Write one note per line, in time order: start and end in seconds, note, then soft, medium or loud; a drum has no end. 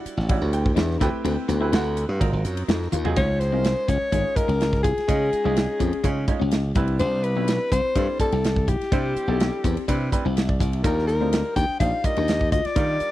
0.00 0.24 G3 medium
0.00 0.25 D4 medium
0.00 0.25 E4 medium
0.00 0.25 F#4 medium
0.00 0.25 D5 medium
0.00 0.29 F#5 medium
0.06 muted slap bass stroke soft
0.06 hi-hat pedal medium
0.06 ride medium
0.17 0.38 A1 medium
0.17 snare soft
0.29 1.02 G3 medium
0.29 1.02 D4 medium
0.29 1.00 E4 medium
0.29 1.02 F#4 medium
0.29 1.02 C#5 medium
0.29 0.53 F#5 medium
0.29 kick medium
0.29 ride medium
0.42 0.72 D2 loud
0.53 0.77 G5 medium
0.53 hi-hat pedal medium
0.53 ride medium
0.66 kick medium
0.75 0.98 E2 medium
0.75 0.98 D4 medium
0.75 0.78 D#5 soft
0.75 snare loud
0.75 ride medium
0.80 1.02 E5 medium
0.91 snare soft
1.00 1.12 D2 medium
1.00 1.55 A3 medium
1.00 1.55 C4 medium
1.00 1.22 E4 medium
1.00 1.55 E4 medium
1.00 1.55 G4 medium
1.00 1.56 B4 medium
1.00 1.70 G5 medium
1.00 kick loud
1.00 snare soft
1.00 hi-hat pedal medium
1.00 ride medium
1.24 1.36 D2 medium
1.24 1.46 C4 medium
1.24 ride medium
1.48 1.70 D2 loud
1.48 1.60 B3 medium
1.48 hi-hat pedal medium
1.48 ride medium
1.61 2.15 A3 medium
1.61 2.15 C4 medium
1.61 1.71 E4 medium
1.61 2.15 E4 medium
1.61 2.15 G4 medium
1.61 2.15 B4 medium
1.72 2.04 D2 loud
1.72 1.94 E4 medium
1.72 2.42 F#5 medium
1.72 snare loud
1.72 ride medium
1.97 hi-hat pedal medium
1.97 ride medium
2.09 2.19 G2 medium
2.19 2.32 G#1 loud
2.19 2.96 F#3 medium
2.19 2.96 C4 medium
2.19 2.96 D#4 medium
2.19 2.96 F4 medium
2.19 2.96 A#4 medium
2.19 kick medium
2.19 ride medium
2.33 2.43 G#1 loud
2.45 2.66 F#2 medium
2.45 hi-hat pedal medium
2.45 ride medium
2.57 ride medium
2.68 2.90 F2 medium
2.68 2.90 D#4 medium
2.68 snare loud
2.68 ride medium
2.82 snare soft
2.92 3.14 D#2 medium
2.92 3.14 F4 medium
2.92 hi-hat pedal medium
2.92 high tom medium
3.04 3.15 F#3 medium
3.04 3.15 C4 medium
3.04 3.15 D#4 medium
3.04 3.15 F4 medium
3.04 3.16 G#4 loud
3.04 floor tom medium
3.16 3.53 C#2 medium
3.16 3.49 G#3 medium
3.16 3.49 C#4 medium
3.16 3.38 D#4 medium
3.16 3.49 D#4 medium
3.16 3.49 F4 medium
3.16 3.49 C5 medium
3.16 3.42 C#5 medium
3.16 kick loud
3.16 hi-hat pedal medium
3.16 ride medium
3.40 3.91 C5 medium
3.40 snare soft
3.40 hi-hat pedal medium
3.40 ride medium
3.52 3.74 C2 medium
3.52 4.07 G#3 medium
3.52 3.74 C4 medium
3.52 4.07 C#4 medium
3.52 4.07 D#4 medium
3.52 4.07 F4 medium
3.52 4.07 A#4 medium
3.64 snare loud
3.64 hi-hat pedal medium
3.64 ride medium
3.88 3.99 C#2 medium
3.88 4.09 C#4 medium
3.88 4.38 C#5 loud
3.88 kick medium
3.88 hi-hat pedal medium
3.88 ride medium
4.02 muted slap bass stroke soft
4.12 4.23 G#1 medium
4.12 4.34 G#3 medium
4.12 4.34 C#4 medium
4.12 4.33 D#4 medium
4.12 4.34 D#4 medium
4.12 4.34 F4 medium
4.12 4.34 G#4 medium
4.12 kick medium
4.12 hi-hat pedal medium
4.12 ride medium
4.36 4.47 G#3 medium
4.36 4.47 C#4 medium
4.36 4.48 D#4 medium
4.36 4.48 F4 medium
4.36 4.83 A#4 medium
4.36 4.48 D#5 medium
4.36 muted slap bass stroke soft
4.36 kick medium
4.36 hi-hat pedal medium
4.36 ride medium
4.48 4.84 C#2 medium
4.48 4.70 C#4 medium
4.48 4.54 F4 soft
4.48 4.55 A#4 soft
4.48 ride medium
4.61 snare medium
4.61 hi-hat pedal medium
4.61 ride medium
4.73 kick medium
4.73 snare soft
4.83 4.95 C2 medium
4.83 5.05 F4 medium
4.83 6.24 G#4 medium
4.83 kick medium
4.83 hi-hat pedal medium
4.83 ride medium
4.98 muted slap bass stroke soft
4.98 snare soft
4.98 ride soft
5.08 5.29 C#3 medium
5.08 5.41 G#3 medium
5.08 5.41 C#4 medium
5.08 5.29 D#4 medium
5.08 5.41 D#4 medium
5.08 5.41 F4 medium
5.08 5.41 D#5 medium
5.08 kick loud
5.08 hi-hat pedal medium
5.08 ride medium
5.33 muted slap bass stroke soft
5.33 hi-hat pedal medium
5.33 ride medium
5.44 5.66 C2 medium
5.44 5.99 G#3 medium
5.44 5.66 C4 medium
5.44 5.99 C#4 medium
5.44 5.99 D#4 medium
5.44 5.99 F4 medium
5.44 5.99 D#5 medium
5.56 snare loud
5.56 hi-hat pedal medium
5.56 ride medium
5.79 5.91 F2 medium
5.79 6.01 C#4 medium
5.79 kick medium
5.79 hi-hat pedal medium
5.79 ride medium
5.93 muted slap bass stroke soft
5.93 ride medium
6.04 6.25 C#3 medium
6.04 6.26 G#3 medium
6.04 6.26 C#4 medium
6.04 6.25 D#4 medium
6.04 6.26 D#4 medium
6.04 6.26 F4 medium
6.04 6.26 C#5 medium
6.04 kick medium
6.04 hi-hat pedal medium
6.04 ride medium
6.28 6.39 G#3 medium
6.28 6.40 C#4 medium
6.28 6.40 D#4 medium
6.28 6.40 F4 medium
6.28 6.40 C#5 medium
6.28 kick medium
6.28 hi-hat pedal medium
6.28 ride medium
6.40 6.72 C#2 medium
6.40 6.61 C#4 medium
6.40 6.46 F4 soft
6.40 6.47 C5 soft
6.51 snare loud
6.51 hi-hat pedal medium
6.51 ride medium
6.75 6.97 C2 medium
6.75 7.30 G3 medium
6.75 7.30 C4 medium
6.75 7.30 D4 medium
6.75 6.97 E4 medium
6.75 7.30 E4 medium
6.75 7.31 B4 medium
6.75 kick loud
6.75 hi-hat pedal medium
6.75 ride medium
6.88 ride medium
6.99 7.36 C2 medium
6.99 7.21 D4 medium
6.99 7.25 C5 medium
6.99 hi-hat pedal medium
6.99 ride medium
7.24 7.72 B4 medium
7.24 hi-hat pedal medium
7.24 ride medium
7.36 7.57 B1 medium
7.36 7.90 G3 medium
7.36 7.58 B3 medium
7.36 7.90 C4 medium
7.36 7.90 D4 medium
7.36 7.90 E4 medium
7.36 7.91 B4 medium
7.48 snare medium
7.48 hi-hat pedal medium
7.48 ride medium
7.72 7.83 C2 medium
7.72 7.93 C4 medium
7.72 8.17 C5 loud
7.72 kick medium
7.72 hi-hat pedal medium
7.72 ride medium
7.85 muted slap bass stroke soft
7.95 8.07 G2 medium
7.95 8.17 G3 medium
7.95 8.18 C4 medium
7.95 8.17 D4 medium
7.95 8.18 D4 medium
7.95 8.18 E4 medium
7.95 8.18 A4 medium
7.95 kick medium
7.95 hi-hat pedal medium
7.95 ride medium
8.20 8.31 G3 medium
8.20 8.31 C4 medium
8.20 8.31 D4 medium
8.20 8.31 E4 medium
8.20 8.70 A4 medium
8.20 8.32 D5 medium
8.20 muted slap bass stroke soft
8.20 kick medium
8.20 hi-hat pedal medium
8.20 ride medium
8.32 8.68 C2 medium
8.32 8.54 C4 medium
8.32 8.38 E4 soft
8.32 8.38 A4 soft
8.32 ride medium
8.44 snare medium
8.44 hi-hat pedal medium
8.44 ride medium
8.56 kick medium
8.68 8.79 B1 medium
8.68 8.90 E4 medium
8.68 10.12 G4 medium
8.68 kick medium
8.68 hi-hat pedal medium
8.68 ride medium
8.81 snare soft
8.81 ride soft
8.92 9.13 C3 medium
8.92 9.25 G3 medium
8.92 9.25 C4 medium
8.92 9.13 D4 medium
8.92 9.25 D4 medium
8.92 9.25 E4 medium
8.92 9.25 C5 medium
8.92 kick loud
8.92 hi-hat pedal medium
8.92 ride medium
9.16 muted slap bass stroke soft
9.16 hi-hat pedal medium
9.16 ride soft
9.28 9.49 B1 medium
9.28 9.82 G3 medium
9.28 9.50 B3 medium
9.28 9.82 C4 medium
9.28 9.83 D4 medium
9.28 9.83 E4 medium
9.28 9.83 A4 medium
9.40 snare loud
9.40 hi-hat pedal medium
9.40 ride medium
9.64 9.75 E2 medium
9.64 9.85 C4 medium
9.64 kick medium
9.64 hi-hat pedal medium
9.64 ride medium
9.77 muted slap bass stroke soft
9.77 ride medium
9.88 10.09 C3 medium
9.88 10.10 G3 medium
9.88 10.10 C4 medium
9.88 10.09 D4 medium
9.88 10.10 D4 medium
9.88 10.10 E4 medium
9.88 10.10 B4 medium
9.88 kick medium
9.88 hi-hat pedal medium
9.88 ride medium
10.12 10.23 G3 medium
10.12 10.23 C4 medium
10.12 10.24 D4 medium
10.12 10.23 E4 medium
10.12 10.24 B4 medium
10.12 10.35 G5 medium
10.12 kick medium
10.12 hi-hat pedal medium
10.12 ride medium
10.25 10.56 C2 medium
10.25 10.46 C4 medium
10.25 10.30 E4 soft
10.25 10.31 B4 soft
10.36 10.48 E5 medium
10.36 snare medium
10.36 hi-hat pedal medium
10.36 ride medium
10.49 10.82 D5 medium
10.49 kick medium
10.60 10.81 C2 medium
10.60 10.82 E4 medium
10.60 kick medium
10.60 hi-hat pedal medium
10.60 ride medium
10.73 ride medium
10.84 11.21 D#2 loud
10.84 11.17 G3 medium
10.84 11.17 D4 medium
10.84 11.17 D#4 medium
10.84 11.06 D#4 medium
10.84 11.17 F4 medium
10.84 11.06 A#4 medium
10.84 11.17 A#4 medium
10.84 kick loud
10.84 hi-hat pedal medium
10.84 ride medium
10.99 snare soft
11.07 11.52 A#4 medium
11.07 hi-hat pedal medium
11.07 ride medium
11.20 11.42 D2 medium
11.20 11.75 G3 medium
11.20 11.42 C4 medium
11.20 11.75 D4 medium
11.20 11.75 D#4 medium
11.20 11.75 F4 medium
11.20 11.75 C5 medium
11.33 snare loud
11.33 hi-hat pedal medium
11.33 ride medium
11.56 11.67 D#2 medium
11.56 11.78 D4 medium
11.56 11.79 G5 loud
11.56 kick medium
11.56 hi-hat pedal medium
11.56 ride medium
11.69 muted slap bass stroke soft
11.80 11.91 A#1 medium
11.80 12.02 G3 medium
11.80 12.02 D4 medium
11.80 12.01 D#4 medium
11.80 12.02 D#4 medium
11.80 12.02 F4 medium
11.80 12.02 C5 medium
11.80 12.07 F5 medium
11.80 kick medium
11.80 hi-hat pedal medium
11.80 ride medium
12.04 12.16 G3 medium
12.04 12.16 D4 medium
12.04 12.16 D#4 medium
12.04 12.16 F4 medium
12.04 12.16 A#4 medium
12.04 12.51 D#5 medium
12.04 muted slap bass stroke soft
12.04 kick medium
12.04 hi-hat pedal medium
12.04 ride medium
12.16 12.52 D#2 medium
12.16 12.38 D4 medium
12.16 12.23 F4 soft
12.16 12.23 A#4 soft
12.16 ride medium
12.28 snare medium
12.28 hi-hat pedal medium
12.28 ride medium
12.41 kick medium
12.52 12.63 D2 medium
12.52 12.74 F4 medium
12.52 12.67 D#5 medium
12.52 kick medium
12.52 hi-hat pedal medium
12.52 ride medium
12.65 13.12 D5 medium
12.65 muted slap bass stroke soft
12.65 snare soft
12.65 ride soft
12.76 12.97 D#3 medium
12.76 13.09 G3 medium
12.76 13.09 D4 medium
12.76 12.97 D#4 medium
12.76 13.09 D#4 medium
12.76 13.09 F4 medium
12.76 13.09 A#4 medium
12.76 kick loud
12.76 hi-hat pedal medium
12.76 ride medium
13.00 muted slap bass stroke soft
13.00 hi-hat pedal medium
13.00 ride soft